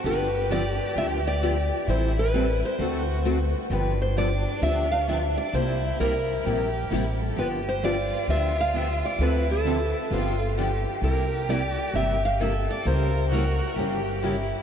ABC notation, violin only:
X:1
M:4/4
L:1/8
Q:"Swing" 1/4=131
K:C
V:1 name="Violin"
G8 | E4 ^F3 z | D8 | E4 G2 E A |
G2 F6 | E4 F2 G2 | G6 A2 | ^A2 ^F2 G2 E2 |]